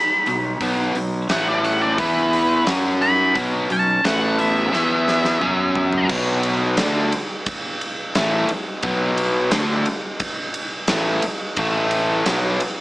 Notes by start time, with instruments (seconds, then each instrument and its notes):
Already playing: lead electric guitar D#4 B5
0.26 fingered electric bass B1, overdriven electric guitar B2 F#3, open hi-hat
0.61 fingered electric bass B1, overdriven electric guitar B2 F#3 B3, kick, open hi-hat
0.95 fingered electric bass B1, overdriven electric guitar B2 F#3, open hi-hat
1.29 fingered electric bass A1, overdriven electric guitar A2 E3 A3, lead electric guitar A3 F#5, snare, open hi-hat
1.45 lead electric guitar E3 D5
1.62 lead electric guitar A3 F#5, open hi-hat
1.82 lead electric guitar E3 D5
1.98 fingered electric bass E2, overdriven electric guitar E3 B3 E4, lead electric guitar E3 B4, kick, open hi-hat
2.33 open hi-hat
2.67 fingered electric bass F#2, overdriven electric guitar F#3 C#4 F#4, snare, open hi-hat
3.02 lead electric guitar D#4 B5, open hi-hat
3.34 fingered electric bass B1, overdriven electric guitar B2 F#3 B3, kick, open hi-hat
3.70 fingered electric bass B1, overdriven electric guitar B2 F#3, lead electric guitar C#4 A5, open hi-hat
4.04 fingered electric bass A1, overdriven electric guitar A2 E3 A3, lead electric guitar A3 F#5, snare, open hi-hat
4.39 lead electric guitar B3 E5, open hi-hat
4.73 fingered electric bass E2, overdriven electric guitar E3 B3 E4, snare
5.08 snare
5.25 snare
5.41 fingered electric bass F#2, overdriven electric guitar F#3 C#4 F#4, mid tom
5.75 floor tom
5.92 floor tom
6.09 fingered electric bass B1, overdriven electric guitar B2 F#3 B3, kick, crash
6.43 ride
6.77 fingered electric bass D2, overdriven electric guitar D3 A3 D4, snare, ride
7.12 ride
7.46 kick, ride
7.81 ride
8.15 fingered electric bass A1, overdriven electric guitar A2 E3 A3, snare, ride
8.49 muted overdriven electric guitar stroke, muted fingered electric bass stroke, ride
8.83 fingered electric bass B1, overdriven electric guitar B2 F#3 B3, kick, ride
9.18 ride
9.51 fingered electric bass D2, overdriven electric guitar D3 A3 D4, snare, ride
9.86 ride
10.20 kick, ride
10.54 ride
10.88 fingered electric bass A1, overdriven electric guitar A2 E3 A3, snare, ride
11.22 muted overdriven electric guitar stroke, muted fingered electric bass stroke, ride
11.56 fingered electric bass A1, overdriven electric guitar A2 E3 A3, kick, ride
11.91 ride
12.26 fingered electric bass B1, overdriven electric guitar B2 F#3 B3, snare, ride
12.60 ride